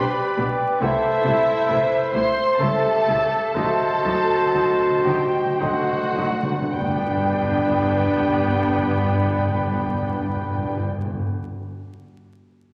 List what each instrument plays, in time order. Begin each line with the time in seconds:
Already playing: french horn section G4, violin section B4 B5, clarinet B4, cor anglais D5, flute G5
0.37 double bass section B1, cello section B2, viola section D4 G4, french horn section B4
0.79 double bass section C2, cello section C3, viola section A3 E4, violin section E4 E5, clarinet A4, french horn section A4, cor anglais C5, flute F#5
0.87 flute E5
1.25 double bass section C2, cello section C3, viola section A3 E4
1.69 double bass section C2, cello section C3, viola section A3 E4, cor anglais B4, french horn section C5
2.12 double bass section C2, cello section C3, viola section A3 E4, violin section C5 C6
2.59 double bass section C#2, cello section C#3, viola section G3 E4, clarinet G4, violin section A4 A5, cor anglais A4, french horn section A4, flute E5
3.07 double bass section C#2, cello section C#3, viola section G3 E4
3.54 double bass section D2, cello section D3, viola section F#3 D#4, clarinet F#4, french horn section F#4, violin section A4 A5, cor anglais C5, flute D#5
3.64 timpani D3
3.81 timpani D3
3.90 timpani D3
3.97 timpani D3
4.04 double bass section D2, cello section D3, timpani D3, viola section F#3 D#4, french horn section F#4
4.14 timpani D3
4.22 timpani D3
4.30 timpani D3
4.38 timpani D3
4.46 timpani D3
4.53 double bass section D2, cello section D3, timpani D3, viola section F#3 D#4
4.64 timpani D3
4.73 timpani D3
4.80 timpani D3
4.90 timpani D3
4.99 timpani D3
5.04 double bass section D2, cello section D3, timpani D3, viola section F#3 D#4, violin section G4 G5
5.18 timpani D3
5.27 timpani D3
5.36 timpani D3
5.45 timpani D3
5.54 timpani D3
5.59 double bass section D2, cello section D3, viola section F#3 D#4, violin section F#4 F#5, clarinet F#4, french horn section A4, cor anglais C5, flute D#5
5.64 timpani D3
5.72 timpani D3
5.82 timpani D3
5.92 timpani D3
6.03 timpani D3
6.13 timpani D3, viola section F#3 D#4
6.17 double bass section D2, cello section D3
6.23 timpani D3
6.32 timpani D3
6.43 timpani D3
6.52 timpani D3
6.62 timpani D3
6.73 double bass section G1, timpani G2, cello section G2, viola section B3 D4, french horn section B3 D4, clarinet G4, cor anglais B4, flute D5, violin section G5
6.80 timpani G2
6.87 timpani G2
6.95 timpani G2
7.02 timpani G2
7.09 timpani G2
7.16 timpani G2
7.22 timpani G2
7.29 timpani G2
7.35 timpani G2
7.42 timpani G2
7.49 timpani G2
7.56 timpani G2
7.62 timpani G2
7.70 timpani G2
7.77 timpani G2
7.84 timpani G2
7.91 timpani G2
7.98 timpani G2
8.05 timpani G2
8.13 timpani G2
8.20 timpani G2
8.26 timpani G2
8.33 timpani G2
8.41 timpani G2
8.47 timpani G2
8.55 timpani G2
8.62 timpani G2
8.69 timpani G2
8.76 timpani G2
8.82 timpani G2
8.89 timpani G2
8.97 timpani G2
9.04 timpani G2
9.10 timpani G2
9.18 timpani G2
9.24 timpani G2
9.31 timpani G2
9.38 timpani G2
9.45 timpani G2
9.52 timpani G2
9.59 timpani G2
9.66 timpani G2
9.72 timpani G2
9.79 timpani G2
9.86 timpani G2
9.93 timpani G2
10.00 timpani G2
10.07 timpani G2
10.14 timpani G2
10.20 timpani G2
10.27 timpani G2
10.34 timpani G2
10.41 timpani G2
10.48 timpani G2
10.55 timpani G2
10.62 timpani G2
10.69 timpani G2
10.77 timpani G2
10.83 timpani G2
10.90 timpani G2
10.97 timpani G2
11.05 timpani G2
11.12 timpani G2
11.19 timpani G2